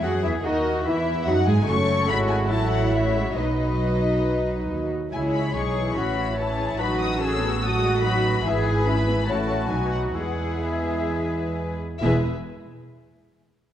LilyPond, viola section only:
\new Staff \with { instrumentName = "Viola section" } { \time 4/4 \key e \major \tempo 4 = 141 << { fis8 e8 dis4 e4 fis8 gis8 | fis'8 a'4. a'4 fis'4 | fis'2.~ fis'8 r8 | e'4 dis'4 cis'4 e'4 |
dis'4 cis'8 b8 fis'4 dis'4 | e'4 cis'8 b8 cis'4 dis'4 | e'2.~ e'8 r8 | e'8 r2. r8 | } \\ { r1 | a4 gis4 fis4 a8 gis8 | fis2.~ fis8 r8 | gis4 gis8 e4. e4 |
fis2 fis8 gis8 fis4 | e4 e4 a4 fis4 | gis2.~ gis8 r8 | gis8 r2. r8 | } >> }